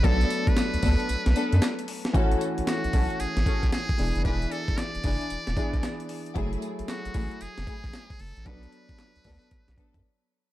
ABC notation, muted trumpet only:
X:1
M:4/4
L:1/16
Q:"Swing 16ths" 1/4=114
K:Bdor
V:1 name="Muted trumpet"
A3 B8- B3 z2 | z4 F4 G4 G4 | B2 A2 d8- d2 z2 | z4 F4 G6 A2 |
B12 z4 |]